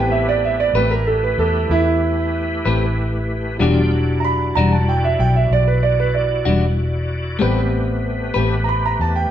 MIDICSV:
0, 0, Header, 1, 5, 480
1, 0, Start_track
1, 0, Tempo, 633580
1, 2730, Time_signature, 12, 3, 24, 8
1, 7052, End_track
2, 0, Start_track
2, 0, Title_t, "Grand piano"
2, 0, Program_c, 0, 0
2, 0, Note_on_c, 0, 55, 35
2, 0, Note_on_c, 0, 59, 33
2, 0, Note_on_c, 0, 60, 38
2, 0, Note_on_c, 0, 79, 59
2, 79, Note_off_c, 0, 79, 0
2, 88, Note_on_c, 0, 76, 61
2, 199, Note_off_c, 0, 76, 0
2, 216, Note_on_c, 0, 74, 65
2, 324, Note_off_c, 0, 74, 0
2, 341, Note_on_c, 0, 76, 58
2, 447, Note_off_c, 0, 76, 0
2, 455, Note_on_c, 0, 74, 67
2, 534, Note_off_c, 0, 55, 0
2, 534, Note_off_c, 0, 59, 0
2, 540, Note_off_c, 0, 60, 0
2, 563, Note_off_c, 0, 74, 0
2, 570, Note_on_c, 0, 71, 67
2, 681, Note_off_c, 0, 71, 0
2, 687, Note_on_c, 0, 70, 62
2, 799, Note_off_c, 0, 70, 0
2, 810, Note_on_c, 0, 69, 61
2, 921, Note_off_c, 0, 69, 0
2, 937, Note_on_c, 0, 71, 61
2, 1045, Note_off_c, 0, 71, 0
2, 1054, Note_on_c, 0, 69, 67
2, 1285, Note_off_c, 0, 69, 0
2, 1296, Note_on_c, 0, 64, 80
2, 2703, Note_off_c, 0, 64, 0
2, 2718, Note_on_c, 0, 54, 39
2, 2723, Note_on_c, 0, 55, 35
2, 2727, Note_on_c, 0, 62, 41
2, 3182, Note_on_c, 0, 82, 52
2, 3211, Note_off_c, 0, 82, 0
2, 3216, Note_on_c, 0, 83, 78
2, 3446, Note_off_c, 0, 83, 0
2, 3450, Note_on_c, 0, 82, 68
2, 3562, Note_off_c, 0, 82, 0
2, 3578, Note_on_c, 0, 81, 58
2, 3686, Note_off_c, 0, 81, 0
2, 3702, Note_on_c, 0, 79, 58
2, 3808, Note_off_c, 0, 79, 0
2, 3821, Note_on_c, 0, 76, 62
2, 3928, Note_off_c, 0, 76, 0
2, 3939, Note_on_c, 0, 79, 61
2, 4046, Note_off_c, 0, 79, 0
2, 4061, Note_on_c, 0, 76, 56
2, 4167, Note_off_c, 0, 76, 0
2, 4187, Note_on_c, 0, 74, 67
2, 4291, Note_off_c, 0, 74, 0
2, 4299, Note_on_c, 0, 71, 63
2, 4407, Note_off_c, 0, 71, 0
2, 4415, Note_on_c, 0, 74, 63
2, 4525, Note_off_c, 0, 74, 0
2, 4544, Note_on_c, 0, 71, 61
2, 4649, Note_off_c, 0, 71, 0
2, 4655, Note_on_c, 0, 74, 50
2, 5118, Note_off_c, 0, 74, 0
2, 5573, Note_off_c, 0, 54, 0
2, 5576, Note_off_c, 0, 55, 0
2, 5578, Note_off_c, 0, 62, 0
2, 5602, Note_on_c, 0, 55, 42
2, 5608, Note_on_c, 0, 59, 33
2, 5617, Note_on_c, 0, 60, 42
2, 6546, Note_on_c, 0, 82, 47
2, 6574, Note_off_c, 0, 82, 0
2, 6582, Note_on_c, 0, 83, 67
2, 6687, Note_off_c, 0, 83, 0
2, 6709, Note_on_c, 0, 82, 62
2, 6811, Note_off_c, 0, 82, 0
2, 6827, Note_on_c, 0, 81, 66
2, 6930, Note_off_c, 0, 81, 0
2, 6939, Note_on_c, 0, 79, 61
2, 7045, Note_off_c, 0, 79, 0
2, 7052, Note_off_c, 0, 55, 0
2, 7052, Note_off_c, 0, 59, 0
2, 7052, Note_off_c, 0, 60, 0
2, 7052, End_track
3, 0, Start_track
3, 0, Title_t, "Tonewheel organ"
3, 0, Program_c, 1, 16
3, 0, Note_on_c, 1, 57, 60
3, 0, Note_on_c, 1, 64, 58
3, 0, Note_on_c, 1, 67, 54
3, 0, Note_on_c, 1, 71, 53
3, 2704, Note_off_c, 1, 64, 0
3, 2704, Note_off_c, 1, 67, 0
3, 2705, Note_off_c, 1, 57, 0
3, 2706, Note_off_c, 1, 71, 0
3, 2724, Note_on_c, 1, 74, 45
3, 2729, Note_on_c, 1, 65, 49
3, 2729, Note_on_c, 1, 79, 48
3, 2731, Note_on_c, 1, 59, 46
3, 2966, Note_off_c, 1, 74, 0
3, 2970, Note_off_c, 1, 65, 0
3, 2970, Note_off_c, 1, 79, 0
3, 2971, Note_off_c, 1, 59, 0
3, 2975, Note_on_c, 1, 74, 56
3, 2978, Note_on_c, 1, 66, 49
3, 2981, Note_on_c, 1, 64, 52
3, 5586, Note_off_c, 1, 74, 0
3, 5587, Note_off_c, 1, 66, 0
3, 5589, Note_off_c, 1, 64, 0
3, 5599, Note_on_c, 1, 57, 52
3, 5601, Note_on_c, 1, 71, 56
3, 5603, Note_on_c, 1, 67, 55
3, 7052, Note_off_c, 1, 57, 0
3, 7052, Note_off_c, 1, 67, 0
3, 7052, Note_off_c, 1, 71, 0
3, 7052, End_track
4, 0, Start_track
4, 0, Title_t, "Clean electric guitar"
4, 0, Program_c, 2, 27
4, 569, Note_on_c, 2, 71, 62
4, 580, Note_on_c, 2, 67, 54
4, 586, Note_on_c, 2, 57, 56
4, 586, Note_on_c, 2, 60, 53
4, 713, Note_off_c, 2, 71, 0
4, 718, Note_off_c, 2, 67, 0
4, 721, Note_off_c, 2, 57, 0
4, 721, Note_off_c, 2, 60, 0
4, 2011, Note_on_c, 2, 71, 59
4, 2016, Note_on_c, 2, 67, 52
4, 2024, Note_on_c, 2, 57, 45
4, 2026, Note_on_c, 2, 60, 51
4, 2155, Note_off_c, 2, 71, 0
4, 2157, Note_off_c, 2, 67, 0
4, 2161, Note_off_c, 2, 57, 0
4, 2162, Note_off_c, 2, 60, 0
4, 2726, Note_on_c, 2, 52, 57
4, 2734, Note_on_c, 2, 55, 64
4, 2743, Note_on_c, 2, 62, 66
4, 2746, Note_on_c, 2, 66, 69
4, 2872, Note_off_c, 2, 52, 0
4, 2876, Note_off_c, 2, 55, 0
4, 2881, Note_off_c, 2, 62, 0
4, 2882, Note_off_c, 2, 66, 0
4, 3461, Note_on_c, 2, 62, 60
4, 3463, Note_on_c, 2, 66, 55
4, 3470, Note_on_c, 2, 55, 51
4, 3475, Note_on_c, 2, 52, 45
4, 3600, Note_off_c, 2, 62, 0
4, 3601, Note_off_c, 2, 66, 0
4, 3604, Note_off_c, 2, 55, 0
4, 3607, Note_off_c, 2, 52, 0
4, 4890, Note_on_c, 2, 66, 60
4, 4896, Note_on_c, 2, 62, 50
4, 4904, Note_on_c, 2, 55, 45
4, 4909, Note_on_c, 2, 52, 42
4, 5034, Note_off_c, 2, 66, 0
4, 5037, Note_off_c, 2, 62, 0
4, 5041, Note_off_c, 2, 55, 0
4, 5043, Note_off_c, 2, 52, 0
4, 5598, Note_on_c, 2, 57, 60
4, 5612, Note_on_c, 2, 60, 67
4, 5618, Note_on_c, 2, 67, 71
4, 5620, Note_on_c, 2, 71, 80
4, 5747, Note_off_c, 2, 57, 0
4, 5755, Note_off_c, 2, 60, 0
4, 5757, Note_off_c, 2, 67, 0
4, 5759, Note_off_c, 2, 71, 0
4, 6320, Note_on_c, 2, 71, 69
4, 6334, Note_on_c, 2, 60, 55
4, 6335, Note_on_c, 2, 67, 67
4, 6344, Note_on_c, 2, 57, 60
4, 6468, Note_off_c, 2, 71, 0
4, 6475, Note_off_c, 2, 60, 0
4, 6476, Note_off_c, 2, 67, 0
4, 6480, Note_off_c, 2, 57, 0
4, 7052, End_track
5, 0, Start_track
5, 0, Title_t, "Fingered electric bass"
5, 0, Program_c, 3, 33
5, 0, Note_on_c, 3, 33, 72
5, 534, Note_off_c, 3, 33, 0
5, 556, Note_on_c, 3, 33, 77
5, 1012, Note_off_c, 3, 33, 0
5, 1045, Note_on_c, 3, 40, 66
5, 1268, Note_off_c, 3, 40, 0
5, 1285, Note_on_c, 3, 40, 73
5, 1978, Note_off_c, 3, 40, 0
5, 2012, Note_on_c, 3, 33, 76
5, 2701, Note_off_c, 3, 33, 0
5, 2728, Note_on_c, 3, 28, 78
5, 3419, Note_off_c, 3, 28, 0
5, 3458, Note_on_c, 3, 28, 71
5, 3904, Note_off_c, 3, 28, 0
5, 3933, Note_on_c, 3, 35, 77
5, 4152, Note_off_c, 3, 35, 0
5, 4167, Note_on_c, 3, 35, 68
5, 4858, Note_off_c, 3, 35, 0
5, 4891, Note_on_c, 3, 28, 70
5, 5580, Note_off_c, 3, 28, 0
5, 5622, Note_on_c, 3, 33, 81
5, 6305, Note_off_c, 3, 33, 0
5, 6333, Note_on_c, 3, 33, 75
5, 6780, Note_off_c, 3, 33, 0
5, 6814, Note_on_c, 3, 40, 64
5, 7032, Note_off_c, 3, 40, 0
5, 7052, End_track
0, 0, End_of_file